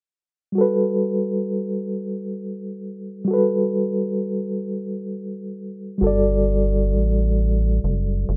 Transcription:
0.52 reed electric piano G3 F#4
0.58 reed electric piano A4 B4
3.25 reed electric piano G3 F#4
3.31 reed electric piano A4 B4
5.98 reed electric piano G3 F#4
6.02 analog synth bass G1, reed electric piano A4
6.07 reed electric piano D5
6.93 analog synth bass A1
7.84 analog synth bass F#1
8.29 analog synth bass F#1

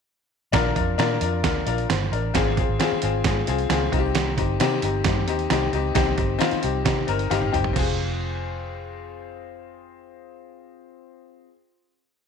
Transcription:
0.52 fingered electric bass A#1, upright piano D4 F4 A#4, kick, snare, closed hi-hat
0.76 fingered electric bass F2, upright piano D4 F4 A#4, kick, closed hi-hat
0.98 fingered electric bass A#2, upright piano D4 F4 A#4, snare, closed hi-hat
1.21 fingered electric bass F2, upright piano D4 F4 A#4, closed hi-hat
1.43 fingered electric bass D2, upright piano D4 F4 A#4, kick, snare, closed hi-hat
1.66 fingered electric bass A#1, upright piano D4 F4 A#4, closed hi-hat
1.78 closed hi-hat
1.89 fingered electric bass G1, upright piano C5, snare, closed hi-hat
2.12 fingered electric bass A1, upright piano D4 A#4, closed hi-hat
2.34 fingered electric bass G#1, upright piano C4 F4 G#4, kick, snare, closed hi-hat
2.57 upright piano C4 F4 G#4, kick, closed hi-hat
2.69 fingered electric bass G#1
2.79 upright piano C4 F4 G#4, snare, closed hi-hat
2.92 muted fingered electric bass stroke
3.02 fingered electric bass G#1, upright piano C4 F4 G#4, closed hi-hat
3.24 fingered electric bass G#2, upright piano C4 F4 G#4, kick, snare, closed hi-hat
3.47 fingered electric bass C2, upright piano C4 F4 G#4, closed hi-hat
3.59 closed hi-hat
3.69 fingered electric bass C#2, upright piano C4 F4 G#4, snare, closed hi-hat
3.92 fingered electric bass C2, upright piano C4 D#4 F4, kick, closed hi-hat
3.99 upright piano G4
4.15 snare, closed hi-hat
4.37 fingered electric bass G1, upright piano C4 D#4 G4, kick, closed hi-hat
4.60 fingered electric bass C3, upright piano C4 D#4 G4, snare, closed hi-hat
4.82 fingered electric bass G1, upright piano C4 D#4 G4, closed hi-hat
5.04 fingered electric bass G2, upright piano C4 D#4 G4, kick, snare, closed hi-hat
5.27 fingered electric bass D#2, upright piano C4 D#4 G4, closed hi-hat
5.39 closed hi-hat
5.50 fingered electric bass C2, upright piano C4 D#4 G4, snare, closed hi-hat
5.73 fingered electric bass C#2, upright piano C4 D#4 G4, closed hi-hat
5.95 fingered electric bass C2, upright piano C4 D#4 G4, kick, snare, closed hi-hat
6.17 fingered electric bass G1, upright piano C4 D#4 G4, kick, closed hi-hat
6.39 upright piano C4 D#4 F4, snare, closed hi-hat
6.51 muted fingered electric bass stroke, closed hi-hat
6.62 fingered electric bass C2, upright piano C4 D#4 G4, closed hi-hat
6.85 fingered electric bass C3, upright piano C4 D#4 G4, kick, snare, closed hi-hat
7.07 fingered electric bass G1, upright piano C4 D#4 A#4, closed hi-hat
7.19 closed hi-hat
7.30 fingered electric bass G1, upright piano C4 D#4 G4 F5, snare, closed hi-hat
7.42 high tom
7.52 fingered electric bass F#1, upright piano C4 D#4 G4 G5, closed hi-hat, mid tom
7.64 floor tom
7.73 fingered electric bass F1, upright piano C4 F4, kick, crash
7.79 upright piano G#4

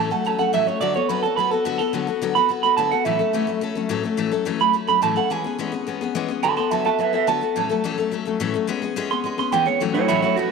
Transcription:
Already playing: steel-string acoustic guitar A2 E3 F#3 A3, clean electric guitar A5
0.10 steel-string acoustic guitar F#3 A3 C#4 A4, clean electric guitar F#5
0.25 steel-string acoustic guitar F#3 A3 C#4 A4, clean electric guitar A5
0.39 steel-string acoustic guitar F#3 A3 C#4 A4, clean electric guitar F#5
0.53 steel-string acoustic guitar A2 E3 F#3 A3 C#4 A4, clean electric guitar E5
0.67 steel-string acoustic guitar F#3 A3 C#4 A4, clean electric guitar C#5
0.81 steel-string acoustic guitar D3 F#3 B3 F#4 A4, clean electric guitar D5
0.94 steel-string acoustic guitar B3 F#4 A4, clean electric guitar C#5
1.09 steel-string acoustic guitar D3 F#3 B3 F#4 A4, clean electric guitar B4
1.23 steel-string acoustic guitar B3 F#4 A4, clean electric guitar A4
1.36 steel-string acoustic guitar F#3 B3 F#4 A4, clean electric guitar B4
1.51 steel-string acoustic guitar B3 F#4 A4, clean electric guitar A4
1.64 steel-string acoustic guitar D3 F#3 B3 F#4 A4, clean electric guitar F#4
1.78 steel-string acoustic guitar B3 F#4 A4, clean electric guitar A4
1.93 steel-string acoustic guitar D3 F#3 B3 F#4 A4
2.07 steel-string acoustic guitar B3 F#4 A4
2.22 steel-string acoustic guitar D3 F#3 B3 F#4 A4
2.35 steel-string acoustic guitar B3 F#4 A4, clean electric guitar B5
2.49 steel-string acoustic guitar F#3 B3 F#4 A4
2.63 steel-string acoustic guitar B3 F#4 A4, clean electric guitar B5
2.77 steel-string acoustic guitar D3 F#3 B3 F#4 A4, clean electric guitar A5
2.91 steel-string acoustic guitar B3 F#4 A4, clean electric guitar F#5
3.05 steel-string acoustic guitar A2 E3 F#3 A3 C#4 A4, clean electric guitar E5
3.19 steel-string acoustic guitar F#3 A3 C#4 A4
3.33 steel-string acoustic guitar A2 E3 F#3 A3 C#4 A4
3.47 steel-string acoustic guitar F#3 A3 C#4 A4
3.61 steel-string acoustic guitar F#3 A3 C#4 A4
3.75 steel-string acoustic guitar F#3 A3 C#4 A4
3.89 steel-string acoustic guitar A2 E3 F#3 A3 C#4 A4
4.03 steel-string acoustic guitar F#3 A3 C#4 A4
4.17 steel-string acoustic guitar A2 E3 F#3 A3 C#4 A4
4.31 steel-string acoustic guitar F#3 A3 C#4 A4
4.45 steel-string acoustic guitar A2 E3 F#3 A3 C#4 A4
4.60 steel-string acoustic guitar F#3 A3 C#4 A4, clean electric guitar B5
4.73 steel-string acoustic guitar F#3 A3 C#4 A4
4.87 steel-string acoustic guitar F#3 A3 C#4 A4, clean electric guitar B5
5.02 steel-string acoustic guitar A2 E3 F#3 A3 C#4 A4, clean electric guitar A5
5.16 steel-string acoustic guitar F#3 A3 C#4 A4, clean electric guitar F#5
5.30 steel-string acoustic guitar E3 G#3 B3 C#4 G#4, clean electric guitar G#5
5.44 steel-string acoustic guitar B3 C#4 G#4
5.59 steel-string acoustic guitar E3 G#3 B3 C#4 G#4
5.72 steel-string acoustic guitar B3 C#4 G#4
5.87 steel-string acoustic guitar G#3 B3 C#4 G#4
6.01 steel-string acoustic guitar B3 C#4 G#4
6.15 steel-string acoustic guitar E3 G#3 B3 C#4 G#4
6.28 steel-string acoustic guitar B3 C#4 G#4
6.43 steel-string acoustic guitar D3 F#3 B3 F#4 A4, clean electric guitar A5 C6
6.57 steel-string acoustic guitar B3 F#4 A4, clean electric guitar A5 C6
6.71 steel-string acoustic guitar D3 F#3 B3 F#4 A4, clean electric guitar E5 A5
6.85 steel-string acoustic guitar B3 F#4 A4, clean electric guitar E5 A5
6.99 steel-string acoustic guitar F#3 B3 F#4 A4, clean electric guitar B4 E5
7.13 steel-string acoustic guitar B3 F#4 A4, clean electric guitar B4 E5
7.27 steel-string acoustic guitar D3 F#3 B3 F#4 A4, clean electric guitar A5
7.41 steel-string acoustic guitar B3 F#4 A4
7.56 steel-string acoustic guitar A2 E3 F#3 A3 C#4 A4
7.69 steel-string acoustic guitar F#3 A3 C#4 A4
7.84 steel-string acoustic guitar A2 E3 F#3 A3 C#4 A4
7.98 steel-string acoustic guitar F#3 A3 C#4 A4
8.11 steel-string acoustic guitar F#3 A3 C#4 A4
8.25 steel-string acoustic guitar F#3 A3 C#4 A4
8.40 steel-string acoustic guitar A2 E3 F#3 A3 C#4 A4
8.54 steel-string acoustic guitar F#3 A3 C#4 A4
8.67 steel-string acoustic guitar E3 G#3 B3 C#4 G#4
8.82 steel-string acoustic guitar B3 C#4 G#4
8.96 steel-string acoustic guitar E3 G#3 B3 C#4 G#4
9.10 steel-string acoustic guitar B3 C#4 G#4, clean electric guitar C6
9.24 steel-string acoustic guitar G#3 B3 C#4 G#4
9.38 steel-string acoustic guitar B3 C#4 G#4, clean electric guitar C6
9.52 steel-string acoustic guitar E3 G#3 B3 C#4 G#4, clean electric guitar G5
9.66 steel-string acoustic guitar B3 C#4 G#4, clean electric guitar C#5
9.80 steel-string acoustic guitar A2 E3 F#3 A3 C#4 F#4
9.94 steel-string acoustic guitar F#3 A3 C#4 F#4, clean electric guitar E4 C#5
10.08 steel-string acoustic guitar A2 E3 F#3 A3 C#4 F#4, clean electric guitar E4 C#5
10.22 steel-string acoustic guitar F#3 A3 C#4 F#4, clean electric guitar E4 C#5
10.36 steel-string acoustic guitar F#3 A3 C#4 F#4, clean electric guitar F#4 B4

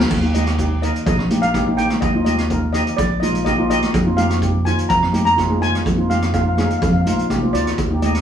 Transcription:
Already playing: steel pan G5
0.00 snare
0.10 upright bass D#2, kick, crash, low conga
0.22 steel pan A#3 D#4 G4
0.34 steel pan A#3 D#4 G4 D#5, closed hi-hat, high conga, low conga
0.47 cross-stick, closed hi-hat
0.58 steel pan A#3 D#4 G4, kick, closed hi-hat
0.82 steel pan A#3 D#4 A#4 D#5, closed hi-hat, low conga
0.96 closed hi-hat
1.06 upright bass A#1, steel pan D#5, kick, closed hi-hat
1.19 cross-stick
1.30 upright bass A#1, steel pan A#3 D#4 G4, closed hi-hat, high conga
1.42 steel pan F5, closed hi-hat
1.53 steel pan A#3 D#4 G4, kick, cross-stick, closed hi-hat
1.67 steel pan A#3 D#4 G4
1.77 steel pan A#3 D#4 G4 G5, closed hi-hat, low conga
1.90 cross-stick, closed hi-hat, high conga
2.01 upright bass D#2, steel pan D#5, kick, closed hi-hat, low conga
2.14 steel pan A#3 D#4 F4
2.25 steel pan A#3 D#4 G4 D#5, closed hi-hat, high conga, low conga
2.38 cross-stick, closed hi-hat
2.50 steel pan A#3 D#4 A#4, kick, closed hi-hat
2.73 steel pan A#3 D#4 G4 D#5, cross-stick, closed hi-hat, low conga
2.87 closed hi-hat
2.97 upright bass A#1, steel pan D5, kick, closed hi-hat
3.20 upright bass A#1, steel pan A#3 D#4 F4 D#5, closed hi-hat, high conga
3.35 closed hi-hat
3.45 steel pan A#3 D#4 G4 D#5, kick, cross-stick, closed hi-hat
3.58 steel pan A#3 D#4 F4
3.69 steel pan A#3 D#4 G4 D#5, closed hi-hat, low conga
3.82 cross-stick, closed hi-hat, high conga
3.94 upright bass F2, kick, closed hi-hat, low conga
4.06 steel pan A#3 D#4 F4
4.17 steel pan A#3 D#4 G4 F5, closed hi-hat, high conga, low conga
4.30 cross-stick, closed hi-hat
4.41 steel pan A#3 D#4 G4, kick, closed hi-hat
4.65 steel pan A#3 D#4 F4 G#5, closed hi-hat, low conga
4.78 closed hi-hat
4.89 upright bass F2, steel pan A#5, kick, closed hi-hat
5.03 cross-stick
5.12 upright bass F2, steel pan A#3 D#4 G4, closed hi-hat, high conga
5.25 steel pan A#5, closed hi-hat
5.36 steel pan A#3 D#4 F4, kick, cross-stick, closed hi-hat
5.49 steel pan A#3 D#4 G#4, high conga
5.60 steel pan A#3 D#4 F4 G#5, closed hi-hat, low conga
5.74 cross-stick, closed hi-hat, high conga
5.85 upright bass F2, kick, closed hi-hat, low conga
5.96 steel pan A#3 D#4 F4
6.09 steel pan A#3 D#4 G4 F5, closed hi-hat, high conga, low conga
6.22 cross-stick, closed hi-hat
6.33 steel pan A#3 D#4 F4 F5, kick, closed hi-hat
6.41 steel pan F5
6.49 steel pan F5
6.55 steel pan A#3 D#4 G#4 F5, cross-stick, closed hi-hat, high conga, low conga
6.64 steel pan F5
6.70 steel pan F5, closed hi-hat
6.78 steel pan F5, kick
6.82 upright bass F2, steel pan F5, closed hi-hat
6.93 steel pan F5
7.01 steel pan F5
7.05 upright bass A#1, steel pan A#3 D#4 F4 F5, closed hi-hat, high conga
7.17 steel pan F5, closed hi-hat
7.29 upright bass C2, steel pan A#3 D#4 G4, kick, cross-stick, closed hi-hat, high conga
7.42 steel pan A#3 D#4 F4, high conga
7.53 upright bass D2, steel pan A#3 D#4 F4 D5, closed hi-hat, low conga
7.67 cross-stick, closed hi-hat, low conga
7.78 upright bass D#2, kick, closed hi-hat, low conga
7.91 steel pan A#3 D#4 G4
8.02 steel pan A#3 D#4 G4 D#5, closed hi-hat, high conga, low conga
8.15 cross-stick, closed hi-hat

